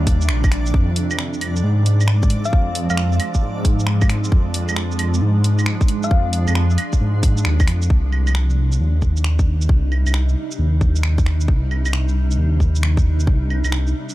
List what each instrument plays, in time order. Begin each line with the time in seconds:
Already playing: detuned saw bass D#2, ambient pad C3 D#3 G3 D4, synth texture D4 D5
0.07 kick, open hi-hat, shaker
0.21 shaker
0.29 detuned saw bass A#1, finger snap
0.44 kick, claves, shaker
0.52 finger snap, open hi-hat
0.66 shaker
0.74 detuned saw bass F2, ambient pad F3 G#3 C4, kick
0.96 open hi-hat
1.11 claves, shaker
1.19 finger snap
1.34 shaker
1.41 open hi-hat, claves
1.56 shaker
1.64 detuned saw bass G#2
1.86 open hi-hat, shaker
2.01 claves, shaker
2.08 finger snap
2.23 kick, shaker
2.30 open hi-hat
2.45 synth pluck F5, shaker
2.53 detuned saw bass F2, kick
2.75 open hi-hat
2.90 detuned saw bass F2, synth pluck F5, claves, shaker
2.97 finger snap
3.12 shaker
3.20 open hi-hat, claves
3.34 kick, shaker
3.43 detuned saw bass G#2
3.65 kick, open hi-hat, shaker
3.80 shaker
3.87 finger snap
4.01 kick, claves, shaker
4.10 finger snap, open hi-hat
4.24 shaker
4.32 detuned saw bass F2, ambient pad D4, kick
4.54 open hi-hat
4.69 claves, shaker
4.76 finger snap
4.92 shaker
4.99 open hi-hat, claves
5.14 shaker
5.22 detuned saw bass G#2
5.44 open hi-hat, shaker
5.59 claves, shaker
5.66 finger snap
5.81 kick, shaker
5.88 open hi-hat
6.03 synth pluck F5, shaker
6.11 detuned saw bass F2, kick
6.33 open hi-hat
6.48 detuned saw bass F2, claves, shaker
6.55 finger snap
6.70 shaker
6.78 open hi-hat, claves
6.93 kick, shaker
7.01 detuned saw bass G#2
7.23 kick, open hi-hat, shaker
7.37 shaker
7.45 detuned saw bass D#2, finger snap
7.60 kick, claves, shaker
7.68 detuned saw bass F2, finger snap, open hi-hat
7.82 shaker
7.89 detuned saw bass C2, ambient pad C3 G3 D4 D#4, kick
8.12 claves
8.27 claves, shaker
8.35 finger snap
8.50 shaker
8.72 shaker
8.80 detuned saw bass D#2
9.02 kick, shaker
9.17 shaker
9.24 finger snap
9.39 kick, shaker
9.62 shaker
9.69 detuned saw bass C2, kick
9.92 claves
10.06 detuned saw bass C2, claves, shaker
10.14 finger snap
10.29 shaker
10.51 shaker
10.59 detuned saw bass D#2
10.81 kick, shaker
10.96 shaker
11.03 finger snap
11.18 kick, shaker
11.26 finger snap
11.41 shaker
11.48 detuned saw bass C2, kick
11.71 claves
11.86 claves, shaker
11.93 finger snap
12.08 shaker
12.31 shaker
12.38 detuned saw bass D#2
12.60 kick, shaker
12.76 shaker
12.83 finger snap
12.97 kick, shaker
13.20 shaker
13.27 detuned saw bass C2, kick
13.50 claves
13.64 detuned saw bass C2, claves, shaker
13.72 finger snap
13.87 shaker
14.09 shaker